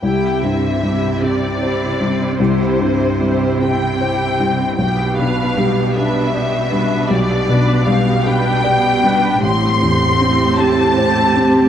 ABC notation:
X:1
M:6/8
L:1/8
Q:3/8=51
K:C
V:1 name="Violin section"
g e2 d3 | c3 g3 | g f2 e3 | d2 f g3 |
c'3 a3 |]
V:2 name="Viola section"
[EG] [CE] [EG] [CE] [EG] [CE] | [EG] [CE] [EG] [CE] [EG] [CE] | [B,G] [DB] [B,G] [DB] [B,G] [DB] | [B,G] [DB] [B,G] [DB] [B,G] [DB] |
[CG]6 |]
V:3 name="Felt piano" clef=bass
C,, G,, G, G c G, | C,, G,, G, G c G, | B,,, B,, G, G d G, | B,,, B,, G, G d G, |
A,,, E,, C G c C |]
V:4 name="Cello section" clef=bass
C,6- | C,6 | B,,6- | B,,6 |
A,,6 |]